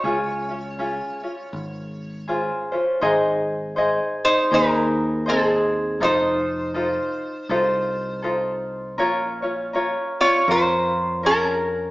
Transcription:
X:1
M:4/4
L:1/8
Q:"Swing" 1/4=80
K:Db
V:1 name="Resonator guitar played with a steel bar"
d6 z2 | [K:Ab] z3 [Ec] [EB]2 [CA]2 | [Ec]6 z2 | z3 [Fd] [Fc]2 [DB]2 |]
V:2 name="Ukulele"
[DFA] [DF] [DFA] [DF]3 [DFAc] [DFc] | [K:Ab] [EAce]2 [EAce]2 [EAce]2 [EAce]2 | [EF=Ac]2 [EFAc]2 [EFAc]2 [EFAc]2 | [DFBd] [DFd] [DFBd]2 [DFB]2 [DFBd]2 |]
V:3 name="Picked electric bass" clef=bass
D,,4 A,,,4 | [K:Ab] A,,,4 E,,4 | F,,,4 C,,4 | B,,,4 F,,4 |]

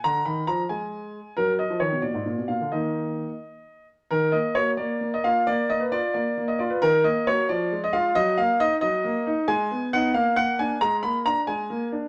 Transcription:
X:1
M:6/8
L:1/16
Q:3/8=90
K:Ebm
V:1 name="Grand piano"
b2 =b2 _b2 a6 | B2 e2 d2 =d4 f2 | e8- e2 z2 | B2 e2 d2 =d3 e f2 |
=d2 e c d2 d3 e d c | B2 e2 d2 =d3 e f2 | e2 f2 e2 e6 | a4 g2 f2 g2 a2 |
b2 c'2 b2 a6 |]
V:2 name="Grand piano"
=D,2 E,2 F,2 A,6 | G,3 F, E, C, B,, A,, B,, C, B,, =D, | [E,B,E]6 z6 | E,2 B,2 [B,G]2 B,2 B,2 [B,F]2 |
B,2 B,2 F2 B,2 B,2 F2 | E,2 B,2 [B,G]2 F,2 A,2 [A,F]2 | G,2 B,2 E2 G,2 B,2 E2 | A,2 C2 [CE]2 B,2 B,2 [B,=D]2 |
A,2 B,2 =D2 A,2 B,2 D2 |]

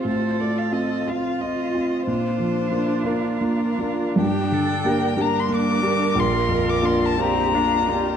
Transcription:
X:1
M:6/8
L:1/16
Q:3/8=59
K:Bb
V:1 name="Violin"
c2 d f e2 f2 e4 | c6 B6 | [K:Gm] g6 b c' d'4 | c'3 d' c' a b6 |]
V:2 name="Cello"
A6 F6 | F12 | [K:Gm] G2 A2 B2 B6- | B6 G2 F2 G2 |]
V:3 name="Viola"
F12 | D12 | [K:Gm] D6 D6 | F6 C2 D2 F2 |]
V:4 name="Grand piano"
A,,2 A,2 [CF]2 [CF]2 C2 [CF]2 | B,,2 F,2 [B,DF]2 [B,DF]2 B,2 [B,DF]2 | [K:Gm] G,,2 D,2 [B,DG]2 [B,DG]2 B,2 [B,DG]2 | B,,,2 F,,2 [B,DF]2 [B,DF]2 B,2 [B,DF]2 |]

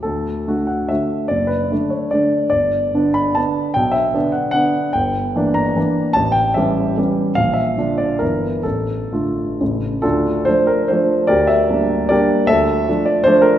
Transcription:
X:1
M:3/4
L:1/8
Q:1/4=148
K:D
V:1 name="Grand piano"
A3 f e2 | d B2 c d2 | d3 b a2 | g e2 f f2 |
[K:Dm] g3 b3 | a g e2 z2 | f e2 d B2 | A4- A z |
[DFA]2 c B c2 | [GBd] e3 [GBd]2 | [Ae]3 d c B |]
V:2 name="Grand piano"
D,,2 [D,A,F]2 [D,A,F]2 | F,,,2 [D,A,D]2 [D,A,D]2 | G,,,2 [D,B,D]2 [D,B,D]2 | B,,,2 [D,B,D]2 [D,B,D]2 |
[K:Dm] G,,,2 [E,B,D]2 [E,B,D]2 | A,,,2 [E,G,^C]2 [E,G,C]2 | B,,,2 [D,F,D]2 [G,,,D,E,E]2 | A,,,2 [D,A,F]2 [A,,,^C,A,E]2 |
D,,2 [F,A,D]2 [F,A,D]2 | D,,2 [G,B,D]2 [G,B,D]2 | D,,2 [F,A,D]2 [F,A,D]2 |]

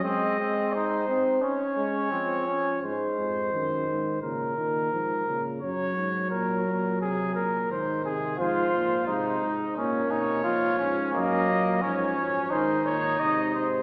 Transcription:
X:1
M:4/4
L:1/8
Q:1/4=87
K:G#dor
V:1 name="Trumpet"
d2 ^B2 c4 | ^B4 A4 | c2 A2 G A ^B G | =c2 c z ^c4 |
d2 c2 ^B c d B |]
V:2 name="Trumpet"
^B, B, D D C2 B, C | z8 | z8 | =F2 D2 C D E C |
A,2 C2 D4 |]
V:3 name="Trombone" clef=bass
G,3 ^B, C G, E,2 | G,2 D,2 C, D, E, C, | F,6 D,2 | =F,2 _A, z ^A,2 E,2 |
F,2 E,2 D,2 ^B,,2 |]
V:4 name="Bass trombone" clef=bass
z8 | G,, E,, F,, G,, A,, A,, G,, A,, | F,, G,, A,, A,, ^B,, A,, G,, B,, | _A,, ^A,, =C, _A,, ^A,, ^B,, A,, G,, |
F,, A,, G,, F,, G,, A,, G,, G,, |]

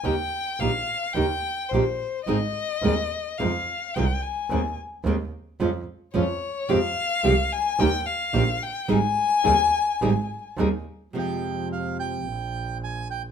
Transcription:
X:1
M:4/4
L:1/8
Q:1/4=108
K:Ab
V:1 name="Bandoneon"
z8 | z8 | z8 | z8 |
z8 | [K:Fm] g2 f g3 a g |]
V:2 name="Violin"
g2 f2 g2 c2 | e4 f2 g a- | a z4 z d2 | f3 a g f2 g |
a6 z2 | [K:Fm] z8 |]
V:3 name="Nylon-string guitar"
[E,B,EG] z [E,B,EG] z [E,B,EG] z [E,B,EG] z | [E,A,CEA] z [E,A,CEA] z [C,E,A,CF] z [C,E,A,CF] z | [E,A,C] z [E,A,C] z [F,A,DF] z [F,A,DF] z | [C,F,A,CG] z [C,F,A,CG] z [E,B,EG] z [E,B,EG] z |
[E,G,CEA] z [E,G,CEA] z [E,G,CEA] z [E,G,CEA] z | [K:Fm] [C,F,A,CF]4 z4 |]
V:4 name="Double bass" clef=bass
E,, z B,,, z E,, z B,,, z | A,,, z E,, z F,, z C,, z | E,, z E,, z F,, z F,, z | F,, z C,, z E,, z B,,, z |
A,,, z E,, z A,,, z E,, z | [K:Fm] F,,4 B,,,4 |]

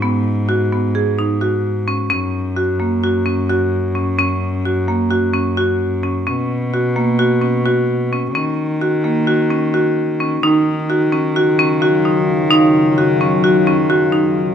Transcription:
X:1
M:9/8
L:1/8
Q:3/8=87
K:Ebm
V:1 name="Marimba"
C2 G C A E G2 D | D2 G B, G D G2 D | D2 G B, G D G2 D | ^C2 ^F B, F C F2 C |
D2 G B, G D G2 D | E2 G D G D G E2 | E2 G D G D G E2 |]
V:2 name="Ambient pad" clef=bass
z8 z | z8 z | z8 z | z8 z |
z8 z | [D,G,F]8- [D,G,F]- | [D,G,F]8- [D,G,F] |]
V:3 name="Cello" clef=bass
A,,8- A,, | G,,8- G,,- | G,,8- G,, | =B,,8- B,, |
E,8- E, | E,8- E,- | E,8- E, |]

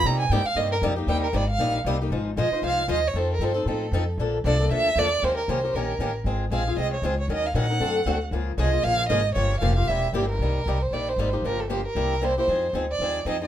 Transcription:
X:1
M:4/4
L:1/8
Q:"Swing" 1/4=232
K:Cm
V:1 name="Violin"
b a g f e B z2 | g B d f2 z3 | [K:Fm] z2 e2 f2 e d | c B c2 =A3 z |
z2 =d2 =e2 d2 | c B c2 B3 z | z2 f2 e d c d | e f _g4- g z |
z2 e2 f2 e2 | d2 f f =e2 G B- | [K:Cm] B3 c d c2 z | B =A G B3 c c- |
c2 z d3 e e |]
V:2 name="Steel-string acoustic guitar"
[C,G,B,EG] z [C,G,B,EG] z [C,G,B,EG] z [C,G,B,EG] [B,EG] | [C,G,B,EG] z [C,G,B,EG] z [C,G,B,EG] z [C,G,B,EG] [B,EG] | [K:Fm] [F,A,EFc] z [F,A,EFc] [EFc] [F,A,EFc] z [F,A,EFc] z | [F,CE=A] z [F,CEA] [CEA] [F,CEA] z [F,CEA] z |
[=D,F,B,=D=A] z [D,F,B,DA] [B,DA] [D,F,B,DA] z [D,F,B,DA] z | [E,B,DGB] z [E,B,DGB] [DGB] [E,B,DGB] z [E,B,DGB] z | [A,CFA] z [A,CFA] [CFA] [A,CFA] z [A,CFA] z | [E,_G,DEB] z [E,G,DEB] [DEB] [=D,=A,C^F=A] z [D,A,CFA] z |
[D,F,B,FA] z [D,F,B,FA] [B,FA] [D,F,B,FA] z [D,F,B,FA] z | [D,F,B,FG] z [D,F,B,FG] [B,FG] [C,G,B,=EG] z [C,G,B,EG] z | [K:Cm] [C,G,B,EG] z [C,G,B,EG] z [C,G,B,EG] z [C,G,B,EG] [B,EG] | [_D,F,B,FG] z [D,F,B,FG] z [C,G,B,=EG] z [C,G,B,EG] [B,EG] |
[F,CEA] z [F,CEA] z [F,CEA] z [F,CEA] [CEA] |]
V:3 name="Upright bass" clef=bass
C,2 A,, z G,,2 F,,2 | E,,2 A,,,2 B,,,2 C,,2 | [K:Fm] A,,,2 B,,, z C,,2 E,,2 | F,,2 G,,2 =A,,2 F,,2 |
B,,,2 C,,2 =D,,2 =E,,2 | E,,2 C,,2 B,,,2 =A,,,2 | A,,,2 B,,,2 C,,2 D,,2 | E,,2 B,,2 ^F,,2 =D,,2 |
D,,2 C,,2 B,,,2 A,,,2 | G,,,2 F,,,2 =E,,,2 G,,,2 | [K:Cm] C,,2 C,,2 B,,,2 A,,,2 | G,,,4 C,,4 |
F,,2 D,,2 E,,2 F,,2 |]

